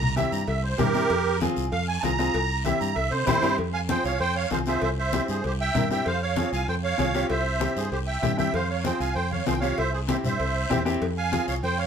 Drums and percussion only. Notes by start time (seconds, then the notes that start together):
0.02 low conga
0.17 cowbell, high conga, short guiro
0.32 short guiro
0.47 cowbell, high conga, long guiro
0.78 cowbell, high conga, low conga, low timbale, short guiro
0.94 short guiro
1.10 cowbell, long guiro
1.41 cowbell, high conga, short guiro
1.56 short guiro
1.72 cowbell, high conga, long guiro
2.03 cowbell, high conga, short guiro
2.19 short guiro
2.34 cowbell, high conga, long guiro
2.65 cowbell, high conga, short guiro
2.81 short guiro
2.96 cowbell, high conga, long guiro
3.12 high timbale
3.27 cowbell, high conga, low conga, high timbale, short guiro
3.42 low timbale, short guiro
3.58 cowbell, high conga, long guiro
3.89 cowbell, high conga, short guiro
4.04 short guiro
4.19 cowbell, high conga, long guiro
4.50 cowbell, high conga, low timbale, short guiro
4.66 short guiro
4.81 cowbell, high conga, long guiro
5.12 cowbell, high conga, short guiro
5.28 short guiro
5.44 cowbell, high conga, long guiro
5.75 cowbell, high conga, low conga, short guiro
5.91 short guiro
6.06 cowbell, high conga, long guiro
6.36 cowbell, high conga, short guiro
6.53 short guiro
6.68 cowbell, high conga, long guiro
6.99 cowbell, high conga, short guiro
7.15 short guiro
7.30 cowbell, high conga, long guiro
7.61 cowbell, high conga, short guiro
7.77 short guiro
7.92 cowbell, high conga, long guiro
8.23 cowbell, high conga, low conga, short guiro
8.39 high conga, short guiro
8.54 cowbell, high conga, long guiro
8.85 cowbell, high conga, short guiro
9.01 short guiro
9.16 cowbell, high conga, long guiro
9.32 high conga
9.46 cowbell, high conga, low timbale, short guiro
9.62 short guiro
9.78 cowbell, high conga, long guiro
10.08 cowbell, high conga, short guiro
10.24 low conga, short guiro
10.40 cowbell, high conga, long guiro
10.70 cowbell, high conga, low conga, short guiro
10.86 short guiro
11.02 cowbell, long guiro
11.33 cowbell, high conga, short guiro
11.48 short guiro
11.63 cowbell, high conga, long guiro